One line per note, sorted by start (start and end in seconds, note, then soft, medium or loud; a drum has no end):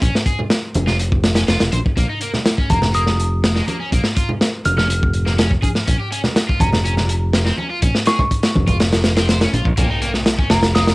0.02 0.09 A#1 loud
0.02 0.14 C#4 medium
0.02 kick loud
0.02 closed hi-hat medium
0.15 snare medium
0.26 0.38 G#4 loud
0.26 kick medium
0.26 closed hi-hat medium
0.39 low conga medium
0.50 snare loud
0.50 closed hi-hat medium
0.74 1.48 F1 medium
0.74 closed hi-hat medium
0.74 high conga loud
0.87 0.95 F4 loud
0.87 snare soft
0.87 low conga medium
0.99 closed hi-hat medium
1.12 kick loud
1.24 snare loud
1.24 closed hi-hat medium
1.35 1.41 C#4 medium
1.35 snare loud
1.35 closed hi-hat medium
1.48 1.56 F1 medium
1.48 1.60 F4 medium
1.48 snare loud
1.48 closed hi-hat medium
1.60 1.68 F1 medium
1.60 snare loud
1.60 closed hi-hat medium
1.72 1.80 A#1 medium
1.72 1.78 C5 medium
1.72 closed hi-hat medium
1.72 high conga medium
1.86 kick loud
1.97 2.05 A#1 medium
1.97 2.05 A#3 medium
1.97 kick loud
1.97 closed hi-hat medium
2.09 2.18 D#4 medium
2.21 2.30 A#3 medium
2.21 closed hi-hat medium
2.34 snare soft
2.34 low conga medium
2.46 snare loud
2.46 closed hi-hat medium
2.58 2.69 C#4 medium
2.58 kick loud
2.70 3.60 F1 medium
2.70 2.79 A#3 medium
2.70 2.86 A#5 medium
2.70 kick loud
2.70 closed hi-hat medium
2.70 high conga medium
2.82 snare medium
2.82 low conga medium
2.94 3.03 A#3 medium
2.94 3.10 D#6 medium
2.94 closed hi-hat medium
3.07 snare soft
3.07 low conga medium
3.20 closed hi-hat medium
3.44 snare loud
3.44 closed hi-hat medium
3.56 3.64 G#3 medium
3.56 snare medium
3.68 3.76 A#3 medium
3.68 closed hi-hat medium
3.68 high conga medium
3.80 3.88 C#4 loud
3.92 4.00 A#1 medium
3.92 4.04 A#3 medium
3.92 kick loud
3.92 closed hi-hat medium
4.04 snare medium
4.17 4.28 F4 loud
4.17 kick medium
4.17 closed hi-hat medium
4.29 low conga medium
4.41 snare loud
4.41 closed hi-hat medium
4.65 5.55 F1 medium
4.65 4.73 F6 medium
4.65 closed hi-hat medium
4.65 high conga medium
4.77 4.86 C#4 loud
4.77 4.85 F6 medium
4.77 snare soft
4.77 low conga medium
4.90 closed hi-hat medium
5.03 kick loud
5.13 closed hi-hat medium
5.26 5.31 A#3 medium
5.26 snare soft
5.38 5.50 C#4 medium
5.38 snare loud
5.38 closed hi-hat medium
5.51 kick medium
5.62 5.68 G#4 medium
5.62 kick medium
5.62 closed hi-hat medium
5.62 high conga medium
5.75 snare soft
5.87 5.95 A#1 loud
5.87 5.96 C#4 medium
5.87 kick loud
5.87 closed hi-hat medium
6.00 6.08 G4 medium
6.12 6.20 C#4 loud
6.12 closed hi-hat medium
6.24 snare soft
6.24 low conga medium
6.36 snare loud
6.36 closed hi-hat medium
6.48 6.59 F4 medium
6.48 kick medium
6.60 7.50 F1 medium
6.60 6.69 C#4 medium
6.60 6.76 A#5 medium
6.60 kick loud
6.60 closed hi-hat medium
6.60 high conga medium
6.73 snare medium
6.73 low conga medium
6.85 6.93 C#4 medium
6.85 closed hi-hat medium
6.97 snare soft
6.97 low conga medium
7.09 closed hi-hat medium
7.33 snare loud
7.33 closed hi-hat medium
7.46 7.54 C4 medium
7.46 snare medium
7.58 7.66 C#4 medium
7.58 high conga medium
7.70 7.78 F4 loud
7.82 7.90 A#1 loud
7.82 7.94 C#4 medium
7.82 kick loud
7.82 closed hi-hat medium
7.95 snare medium
8.06 8.19 G#4 loud
8.06 8.15 C#6 medium
8.06 snare loud
8.06 closed hi-hat medium
8.19 8.27 C#6 medium
8.19 kick medium
8.19 low conga medium
8.31 kick medium
8.31 closed hi-hat medium
8.43 snare loud
8.43 closed hi-hat medium
8.55 9.46 F1 medium
8.55 kick medium
8.55 high conga loud
8.68 8.76 F4 loud
8.68 kick medium
8.68 closed hi-hat medium
8.68 low conga medium
8.80 snare loud
8.80 closed hi-hat medium
8.93 snare loud
8.93 closed hi-hat medium
9.04 snare loud
9.04 closed hi-hat medium
9.17 9.29 C4 medium
9.17 snare loud
9.17 closed hi-hat medium
9.29 9.37 C5 medium
9.29 snare loud
9.29 closed hi-hat medium
9.41 9.52 C#4 medium
9.41 snare loud
9.41 closed hi-hat medium
9.53 9.61 A#1 medium
9.53 9.64 F4 loud
9.53 closed hi-hat medium
9.53 high conga medium
9.65 9.73 A#1 loud
9.65 kick medium
9.77 9.85 A#1 loud
9.77 9.86 A#3 medium
9.77 kick loud
9.77 closed hi-hat medium
9.77 crash loud
9.77 impact medium
9.90 9.98 D#4 medium
10.02 10.10 A#3 loud
10.02 closed hi-hat medium
10.14 snare soft
10.26 snare loud
10.26 closed hi-hat medium
10.39 10.50 C#4 medium
10.39 kick medium
10.50 10.95 F1 medium
10.50 10.59 A#3 medium
10.50 10.66 A#5 medium
10.50 snare loud
10.50 closed hi-hat medium
10.63 snare loud
10.63 closed hi-hat medium
10.75 10.83 A#3 medium
10.75 10.90 D#6 medium
10.75 snare loud
10.75 closed hi-hat medium
10.87 snare loud
10.87 closed hi-hat medium